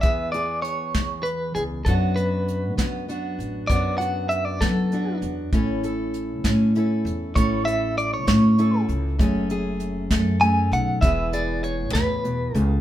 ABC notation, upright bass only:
X:1
M:6/8
L:1/8
Q:3/8=66
K:Emix
V:1 name="Upright bass" clef=bass
E,,3 E,2 C,, | F,,3 F,2 A,,, | F,,3 F,2 E,, | A,,,3 A,,2 E,, |
A,,,3 A,,2 C,, | F,,,3 F,,2 B,,, | E,,,3 E,,2 C,, |]